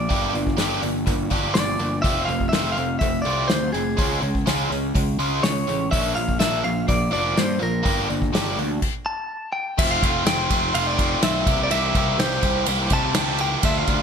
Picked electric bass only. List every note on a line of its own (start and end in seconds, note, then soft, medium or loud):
0.10 0.31 G1 medium
0.34 0.55 G1 medium
0.58 0.79 G1 medium
0.82 1.03 G1 medium
1.07 1.28 G1 medium
1.31 1.52 G1 medium
1.56 1.77 G1 medium
1.80 2.01 G1 medium
2.04 2.25 F1 medium
2.29 2.49 F1 medium
2.53 2.73 F1 medium
2.77 2.98 F1 medium
3.01 3.22 F1 medium
3.26 3.46 C2 medium
3.51 3.71 D2 medium
3.74 3.94 F1 medium
3.99 4.19 C#2 medium
4.22 4.43 C#2 medium
4.46 4.67 C#2 medium
4.71 4.91 C#2 medium
4.95 5.16 C#2 medium
5.19 5.39 C#2 medium
5.44 5.64 C#2 medium
5.68 5.88 A1 medium
5.93 6.13 A#1 medium
6.17 6.37 A#1 medium
6.41 6.61 A#1 medium
6.65 6.85 A#1 medium
6.89 7.09 A#1 medium
7.13 7.34 F1 medium
7.38 7.58 G2 medium
7.62 7.82 A#1 medium
7.86 8.06 G1 medium
8.10 8.30 G1 medium
8.34 8.54 G1 medium
8.58 8.78 D2 medium
9.79 9.98 F1 medium
10.03 10.23 F1 medium
10.26 10.46 F1 medium
10.51 10.71 F1 medium
10.74 11.14 F1 medium
11.23 11.43 B1 medium
11.47 11.67 C2 medium
11.71 11.91 C2 medium
11.95 12.15 C2 medium
12.19 12.39 C2 loud
12.43 12.63 C2 medium
12.67 12.87 C2 medium
12.91 13.11 C2 medium
13.15 13.55 C#2 medium
13.64 13.84 D2 medium
13.88 14.02 D2 medium